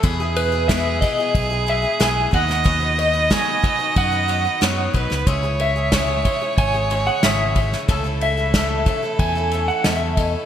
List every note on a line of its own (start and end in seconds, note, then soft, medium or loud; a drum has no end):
0.00 1.03 E2 loud
0.00 2.30 B2 medium
0.00 2.29 E3 medium
0.00 0.20 E3 medium
0.00 2.30 G#3 medium
0.00 0.20 G#3 medium
0.00 0.20 B3 loud
0.00 2.30 E4 medium
0.00 2.35 G#4 loud
0.00 kick loud
0.00 ride medium
0.04 0.20 E4 medium
0.04 0.19 G#4 loud
0.20 0.53 B3 soft
0.20 0.52 E4 medium
0.20 0.51 G#4 medium
0.36 0.70 B4 loud
0.36 ride medium
0.52 0.69 B3 soft
0.52 0.69 E4 medium
0.52 0.69 G#4 medium
0.68 1.02 E3 medium
0.68 1.01 G#3 medium
0.68 1.02 B3 medium
0.68 1.02 E4 medium
0.68 1.03 G#4 medium
0.68 1.01 E5 loud
0.68 kick medium
0.68 snare loud
0.68 ride medium
1.01 1.18 G#3 medium
1.01 1.19 B3 medium
1.01 1.19 E4 medium
1.01 1.17 G#4 medium
1.01 1.32 D#5 loud
1.01 kick medium
1.01 ride medium
1.18 1.52 B3 soft
1.18 1.50 E4 medium
1.18 1.49 G#4 medium
1.35 1.84 B1 loud
1.35 kick loud
1.35 ride medium
1.50 1.66 B3 medium
1.50 1.67 E4 medium
1.50 1.67 G#4 medium
1.67 1.83 G#3 medium
1.67 1.84 B3 medium
1.67 1.82 E4 medium
1.67 1.81 G#4 medium
1.67 2.02 E5 loud
1.67 ride medium
1.82 1.99 B3 soft
1.82 1.99 E4 soft
1.82 1.99 G#4 medium
2.00 2.25 B1 loud
2.00 2.33 E3 medium
2.00 2.31 G#3 loud
2.00 2.31 B3 loud
2.00 2.33 E4 loud
2.00 2.33 G#4 loud
2.00 2.34 G#5 loud
2.00 snare loud
2.00 ride medium
2.31 3.32 D#2 loud
2.31 5.24 D#3 medium
2.31 2.48 F#3 medium
2.31 5.24 F#3 medium
2.31 2.49 B3 medium
2.31 5.24 B3 medium
2.31 2.48 D#4 medium
2.31 5.24 F#4 medium
2.31 2.47 B4 medium
2.31 4.63 D#5 loud
2.31 2.64 F#5 medium
2.31 kick medium
2.31 ride medium
2.48 2.63 B3 soft
2.48 2.64 D#4 medium
2.48 2.64 B4 medium
2.48 snare soft
2.64 2.81 D#3 medium
2.64 2.81 F#3 medium
2.64 2.81 B3 medium
2.64 2.80 D#4 medium
2.64 2.79 B4 medium
2.64 kick loud
2.64 ride medium
2.80 3.15 B3 soft
2.80 3.14 D#4 soft
2.80 3.12 B4 medium
2.99 3.32 D#5 medium
2.99 ride medium
3.13 3.30 B3 soft
3.13 3.30 D#4 medium
3.13 3.30 B4 medium
3.30 3.63 D#3 medium
3.30 3.61 F#3 medium
3.30 3.62 B3 medium
3.30 3.63 D#4 loud
3.30 3.64 B4 medium
3.30 3.97 G#5 loud
3.30 kick medium
3.30 snare loud
3.30 ride medium
3.63 3.80 F#3 medium
3.63 3.80 B3 medium
3.63 3.79 D#4 medium
3.63 3.77 B4 medium
3.63 kick loud
3.63 ride medium
3.79 4.13 B3 soft
3.79 4.12 D#4 medium
3.79 4.10 B4 medium
3.96 4.46 F#2 medium
3.96 4.91 F#5 medium
3.96 kick loud
3.96 ride medium
4.12 4.28 B3 soft
4.12 4.29 D#4 medium
4.12 4.29 B4 medium
4.28 4.45 F#3 medium
4.28 4.46 B3 medium
4.28 4.45 D#4 medium
4.28 4.44 B4 medium
4.28 ride medium
4.45 4.61 B3 soft
4.45 4.61 D#4 soft
4.45 4.61 B4 medium
4.61 4.87 F#2 loud
4.61 4.94 D#3 medium
4.61 4.92 F#3 medium
4.61 4.93 B3 medium
4.61 4.94 D#4 medium
4.61 4.95 B4 loud
4.61 4.96 C#5 loud
4.61 snare loud
4.61 ride medium
4.94 5.09 B1 medium
4.94 5.10 F#3 medium
4.94 5.11 B3 medium
4.94 5.10 D#4 medium
4.94 5.28 B4 loud
4.94 5.09 B4 medium
4.94 kick medium
4.94 ride medium
5.10 5.26 C#2 medium
5.10 5.27 B3 soft
5.10 5.27 D#4 medium
5.10 5.27 B4 medium
5.10 snare soft
5.27 6.26 C#2 loud
5.27 5.43 C#3 medium
5.27 10.46 C#3 medium
5.27 10.46 E3 medium
5.27 7.86 G#3 medium
5.27 5.43 G#3 loud
5.27 5.44 C#4 medium
5.27 10.46 E4 medium
5.27 5.43 E4 medium
5.27 5.42 G#4 loud
5.27 7.88 C#5 loud
5.27 kick loud
5.27 ride medium
5.43 5.77 C#4 soft
5.43 5.76 E4 soft
5.43 5.75 G#4 medium
5.60 6.55 E5 medium
5.60 ride medium
5.76 5.92 C#4 soft
5.76 5.93 E4 medium
5.76 5.92 G#4 medium
5.92 6.25 C#3 medium
5.92 6.24 G#3 medium
5.92 6.24 C#4 medium
5.92 6.25 E4 medium
5.92 6.26 G#4 loud
5.92 kick medium
5.92 snare loud
5.92 ride medium
6.25 6.41 G#3 medium
6.25 6.42 C#4 medium
6.25 6.41 E4 medium
6.25 6.40 G#4 medium
6.25 kick medium
6.25 ride medium
6.41 6.75 C#4 soft
6.41 6.74 E4 soft
6.41 6.72 G#4 medium
6.58 7.07 G#1 medium
6.58 7.04 G#5 loud
6.58 kick loud
6.58 ride medium
6.74 6.90 C#4 medium
6.74 6.91 E4 medium
6.74 6.90 G#4 medium
6.90 7.07 G#3 medium
6.90 7.07 C#4 medium
6.90 7.06 E4 medium
6.90 7.05 G#4 medium
6.90 ride medium
7.07 7.23 C#4 soft
7.07 7.23 E4 soft
7.07 7.23 G#4 medium
7.07 7.22 F#5 medium
7.23 7.73 G#1 loud
7.23 7.56 C#3 medium
7.23 7.54 G#3 loud
7.23 7.55 C#4 loud
7.23 7.56 E4 medium
7.23 7.56 G#4 loud
7.23 7.69 E5 medium
7.23 snare loud
7.23 ride medium
7.55 7.88 G#3 medium
7.55 7.88 C#4 medium
7.55 7.88 E4 medium
7.55 7.90 G#4 medium
7.55 kick medium
7.55 ride medium
7.72 snare soft
7.88 8.88 C#2 loud
7.88 8.05 C#3 medium
7.88 8.05 A3 medium
7.88 10.46 A3 medium
7.88 8.05 C#4 loud
7.88 8.04 E4 medium
7.88 10.46 A4 loud
7.88 8.03 A4 loud
7.88 kick loud
7.88 ride medium
8.04 8.38 C#4 soft
8.04 8.37 E4 medium
8.04 8.36 A4 medium
8.21 9.16 E5 medium
8.21 ride medium
8.37 8.53 C#4 medium
8.37 8.54 E4 medium
8.37 8.54 A4 medium
8.54 8.87 C#3 medium
8.54 8.85 A3 medium
8.54 8.86 C#4 medium
8.54 8.87 E4 medium
8.54 8.87 A4 medium
8.54 kick medium
8.54 snare loud
8.54 ride medium
8.86 9.03 A3 medium
8.86 9.03 C#4 medium
8.86 9.03 E4 medium
8.86 9.01 A4 medium
8.86 kick loud
8.86 ride medium
9.03 9.37 C#4 soft
9.03 9.36 E4 medium
9.03 9.34 A4 medium
9.19 9.69 E2 medium
9.19 9.68 G#5 loud
9.19 kick loud
9.19 ride medium
9.35 9.52 C#4 medium
9.35 9.53 E4 soft
9.35 9.52 A4 medium
9.51 9.69 A3 medium
9.51 9.69 C#4 medium
9.51 9.69 E4 medium
9.51 9.67 A4 medium
9.51 ride medium
9.68 9.85 C#4 soft
9.68 9.85 E4 soft
9.68 9.85 A4 medium
9.68 9.83 F#5 loud
9.84 10.34 E2 loud
9.84 10.17 C#3 medium
9.84 10.17 A3 medium
9.84 10.18 C#4 medium
9.84 10.18 E4 loud
9.84 10.18 A4 loud
9.84 10.19 E5 medium
9.84 snare loud
9.84 ride medium
10.17 10.46 A3 medium
10.17 10.46 C#4 medium
10.17 10.46 E4 medium
10.17 10.46 A4 medium
10.17 10.30 D#5 medium
10.17 kick medium
10.17 ride medium